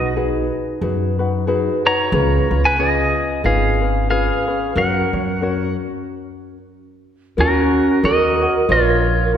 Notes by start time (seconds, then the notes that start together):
Already playing: B1 D#4 F#4 B4 D#5
0.16 D#4 F#4 G#4 B4
0.81 F#2 D#4 F#4 G#4 B4
1.19 D#4 F#4 B4
1.47 D#4 F#4 G#4 B4
1.85 D#4 F#4 B4 C#5 A#5
2.12 C#2 C#4 F4 G#4 B4
2.50 C#2 C#4 F4 B4
2.65 B4 G#5
2.78 C#4 F4 G#4 B4 D#5
3.44 G#1 C#4 F4 G#4 B4 F5
3.82 C#4 F4 B4
4.09 C#4 F4 G#4 B4 F5
4.48 C#4 F4 B4
4.76 F#2 C#4 F#4 A#4 C#5 F#5
5.13 F#2 C#4 F#4 C#5
5.42 C#4 F#4 A#4 C#5
7.37 D#2 F#4 A#4 C#5
7.42 C#4
8.03 D#2 F#4 A#4 C#5 D#5
8.41 F#4 C#5
8.68 A#1 F4 A#4 C#5
8.73 F4
9.33 F4 A#4